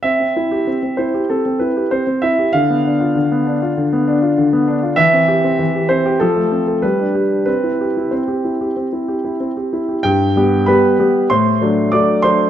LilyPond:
\new Staff \with { instrumentName = "Grand piano" } { \time 4/4 \key c \major \tempo 4 = 96 << { e''4. c''8 a'8 b'8 c''8 e''8 | f''2.~ f''8 r8 | e''4. c''8 a'4 b'4 | b'4 c''2~ c''8 r8 |
\key g \major <g' g''>4 <b' b''>4 <c'' c'''>4 <d'' d'''>8 <c'' c'''>8 | } \\ { c'16 c'16 e'16 g'16 c'16 c'16 e'16 g'16 c'16 c'16 e'16 g'16 c'16 c'16 e'16 g'16 | d16 b16 d'16 f'16 d16 b16 d'16 f'16 d16 b16 d'16 f'16 d16 b16 d'16 f'16 | e16 c'16 g'16 c'16 e16 g'16 c'16 g'16 f16 a16 c'16 a'16 g16 d'16 g'16 d'16 | c'16 e'16 g'16 e'16 c'16 g'16 e'16 g'16 c'16 e'16 g'16 e'16 c'16 g'16 e'16 g'16 |
g,8 <g b g'>8 <g b g'>8 <g b g'>8 a,8 <fis a d'>8 <fis a d'>8 <fis a d'>8 | } >> }